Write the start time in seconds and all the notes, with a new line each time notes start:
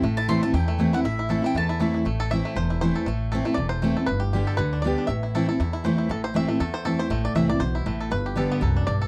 Already playing: E4
0.02 A1 A2 A3
0.17 E4 A5
0.28 E3 A3 C4 E4 A4 C6
0.43 A3 C4 E4 A5
0.54 E2 E4 G5
0.68 A3
0.78 E3 A3 C4 E4
0.93 C4 E4 F#5
1.04 A1 A2 E4 E5
1.19 E4
1.29 E3 A3 C4 E4 A4
1.42 C4 E4
1.46 G5
1.55 E2 A3 A5
1.69 E4
1.80 E3 A3 C4 E4 A4
1.94 E4
2.05 A1 A2 A3
2.20 A4
2.31 E3 A3 C4 E4 E5
2.45 A3
2.56 E1 E2 C5
2.70 E4
2.81 E3 A3 C4 E4 C5
2.95 A4
3.06 A1 A2 A3
3.32 E3 A3 C4 E4 A4
3.45 A3 C4 E4
3.54 E1 E2 D5
3.69 C5
3.82 E3 A3 C4 E4
3.96 C4 E4 A4
4.06 G1 G2 B4
4.20 G4
4.33 D3 G3 B3 G4
4.47 A4
4.57 D2 D3 B4
4.73 D4
4.82 D3 G3 B3 D5
4.87 G4
4.98 D4
5.07 A1 A2 E5
5.23 E4
5.35 E3 A3 C4 E4 A4
5.48 C4 E4 A4
5.60 E2 E4
5.73 E4
5.84 E3 A3 C4 E4 C5
5.98 E4
6.09 A1 A2 A4
6.24 C5
6.34 E3 A3 C4 E4 E5
6.48 A3 C4 E4
6.60 E2 A4
6.74 C5
6.85 E3 A3 C4 E4 A4
6.99 C5
7.10 A1 A2 A3
7.25 D5
7.35 C2 E3 A3 C4 E4 E5
7.49 C4 E4 D5
7.60 B1 B2 C5
7.75 E4
7.86 A1 A2 A3
8.00 A4
8.11 G1 G2 B4
8.26 G4
8.36 D3 G3 B3 G4 A4
8.51 B3
8.61 C2 F#2 A4
8.76 D4
8.87 B1 G2 D5
9.01 A4